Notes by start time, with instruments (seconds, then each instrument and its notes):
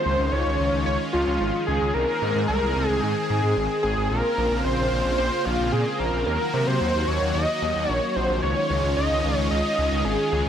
Already playing: analog synth pad D#3 G#3 C#4 F4, analog synth lead C5
0.05 detuned saw bass C#2
0.19 detuned saw bass C#2
0.32 detuned saw bass C#2, analog synth lead C#5
0.46 detuned saw bass C#2
0.60 detuned saw bass C#2
0.73 detuned saw bass C#2
0.86 detuned saw bass C#2, analog synth lead C#5
1.13 detuned saw bass C#2, analog synth lead F4
1.27 detuned saw bass C#2
1.41 detuned saw bass G#1
1.67 detuned saw bass C#2, analog synth lead G#4
1.81 detuned saw bass C#2
1.94 detuned saw bass C2, analog synth pad C4 G#4, analog synth lead A#4
2.22 detuned saw bass G#2
2.35 detuned saw bass G#2
2.48 detuned saw bass C2, analog synth lead A#4
2.62 detuned saw bass C2
2.76 detuned saw bass C2
2.88 detuned saw bass C2, analog synth lead G#4
3.02 detuned saw bass G#2, analog synth lead G#4
3.30 detuned saw bass G#2
3.43 detuned saw bass G#2
3.57 detuned saw bass G#1
3.83 detuned saw bass G#1, analog synth lead G#4
3.97 detuned saw bass G#1
4.10 detuned saw bass A#1, analog synth pad C#3 A#3 F4, analog synth lead A#4
4.38 detuned saw bass A#1
4.51 detuned saw bass A#1
4.64 detuned saw bass A#1, analog synth lead C5
4.78 detuned saw bass A#1
4.92 detuned saw bass A#1
5.05 detuned saw bass A#1
5.18 detuned saw bass A#1, analog synth lead C5
5.45 detuned saw bass A#1, analog synth lead F4
5.59 detuned saw bass A#1
5.72 detuned saw bass A#2, analog synth lead G#4
5.99 detuned saw bass A#1, analog synth lead A#4
6.13 detuned saw bass A#1
6.26 detuned saw bass D#2, analog synth pad D#3 F#3 F#4, analog synth lead A#4
6.53 detuned saw bass C3
6.67 detuned saw bass C3, analog synth lead C5
6.81 detuned saw bass D#2
6.94 detuned saw bass D#2
7.07 detuned saw bass D#2, analog synth lead C#5
7.21 detuned saw bass D#2
7.34 detuned saw bass D#2, analog synth lead D#5
7.62 detuned saw bass D#2
7.75 detuned saw bass D#2
7.89 detuned saw bass A#1, analog synth lead C#5
8.15 detuned saw bass A#1, analog synth lead C5
8.29 detuned saw bass A#1
8.42 detuned saw bass C#2, analog synth pad G#3 C#4 F4, analog synth lead C#5
8.70 detuned saw bass C#2
8.84 detuned saw bass C#2
8.97 detuned saw bass C#2, analog synth lead D#5
9.11 detuned saw bass C#2
9.24 detuned saw bass C#2
9.38 detuned saw bass C#2
9.51 detuned saw bass C#2, analog synth lead D#5
9.78 detuned saw bass C#2
9.92 detuned saw bass C#2
10.05 detuned saw bass G#1, analog synth lead G#4
10.32 detuned saw bass C#2, analog synth lead G#4
10.46 detuned saw bass C#2